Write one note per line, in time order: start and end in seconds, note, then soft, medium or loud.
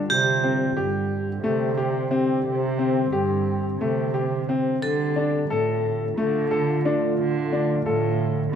0.00 4.79 D3 medium
0.00 0.24 F4 medium
0.10 0.66 C3 medium
0.10 4.78 C4 medium
0.10 4.44 G4 loud
0.10 4.78 G4 medium
0.44 0.69 C4 medium
0.77 1.33 G2 medium
0.77 1.28 G4 medium
1.43 2.28 C3 medium
1.43 1.70 A3 medium
1.77 2.03 G4 medium
2.11 2.37 C4 medium
2.45 3.01 C3 medium
2.79 3.05 C4 medium
3.11 3.69 G2 medium
3.11 3.65 G4 medium
3.80 4.66 C3 medium
3.80 4.07 A3 medium
4.14 4.40 G4 medium
4.49 4.75 C4 medium
4.81 8.55 D3 medium
4.81 5.39 D3 medium
4.81 8.55 A3 medium
4.81 8.55 F4 medium
4.81 8.55 A4 medium
5.16 5.42 D4 medium
5.49 6.07 A2 medium
5.49 6.03 A4 medium
6.17 7.02 D3 medium
6.17 6.44 A3 medium
6.51 6.77 A4 medium
6.85 7.11 D4 medium
7.19 7.75 D3 medium
7.53 7.79 D4 medium
7.86 8.42 A2 medium
7.86 8.38 A4 medium